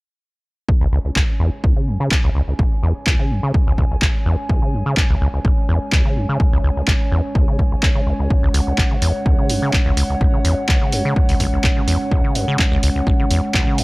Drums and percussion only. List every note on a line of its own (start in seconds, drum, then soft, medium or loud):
0.69 kick loud
1.16 kick loud
1.16 clap loud
1.64 kick loud
2.11 kick loud
2.11 clap loud
2.59 kick loud
3.07 kick loud
3.07 clap loud
3.54 kick loud
3.78 kick medium
4.02 kick loud
4.02 clap loud
4.49 kick loud
4.97 kick loud
4.97 clap loud
5.45 kick loud
5.92 kick loud
5.92 clap loud
6.40 kick loud
6.88 kick loud
6.88 clap loud
7.35 kick loud
7.59 kick medium
7.83 kick loud
7.83 clap loud
8.30 kick loud
8.54 open hi-hat loud
8.78 kick loud
8.78 clap loud
9.02 open hi-hat loud
9.26 kick loud
9.50 open hi-hat loud
9.73 kick loud
9.73 clap loud
9.97 open hi-hat loud
10.21 kick loud
10.45 open hi-hat medium
10.69 kick loud
10.69 clap loud
10.92 open hi-hat loud
11.16 kick loud
11.29 open hi-hat medium
11.40 kick medium
11.40 open hi-hat medium
11.64 kick loud
11.64 clap loud
11.88 open hi-hat loud
12.11 kick loud
12.35 open hi-hat medium
12.59 kick loud
12.59 clap loud
12.83 open hi-hat loud
13.07 kick loud
13.31 open hi-hat loud
13.54 kick loud
13.54 clap loud
13.78 open hi-hat medium